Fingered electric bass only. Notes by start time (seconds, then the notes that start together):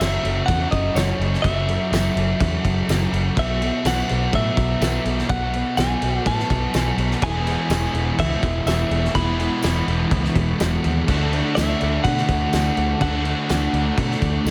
0.00 F#1
0.24 F#1
0.48 E2
0.72 F#1
0.95 F#1
1.19 F#1
1.44 F#1
1.92 F#1
2.16 F#1
2.41 E2
2.65 F#1
2.88 F#1
3.12 F#1
3.37 B1
3.85 B1
4.11 B1
4.33 A2
4.57 B1
4.80 B1
5.05 B1
5.29 B1
5.77 B1
6.02 B1
6.26 A2
6.50 B1
6.74 B1
6.97 B1
7.22 E1
7.69 E1
7.94 E1
8.18 C#2
8.43 E1
8.66 E1
8.90 E1
9.15 E1
9.64 E1
9.87 E1
10.11 C#2
10.35 E1
10.61 E1
10.85 D#2
11.08 D2
11.57 D2
11.82 D2
12.05 B2
12.29 D2
12.53 D2
12.77 D2
13.00 D2
13.50 D2
13.73 D2
13.98 B2
14.22 D2
14.45 D2